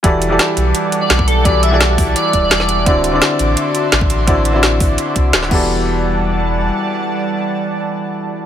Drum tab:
CC |----------------|----------------|----------------|--------------x-|
HH |x-x-x-x-x-x-x-x-|x-x-x-o-x-x-x-x-|x-x-x-x-x-x-x-x-|x-x-x-o-x-x-x---|
SD |----o-------o---|----o-------oo--|----o-------o---|----o-------oo--|
BD |o------------o--|o-----o---o-----|o------------o--|o-----o---o---o-|

CC |----------------|----------------|
HH |----------------|----------------|
SD |----------------|----------------|
BD |----------------|----------------|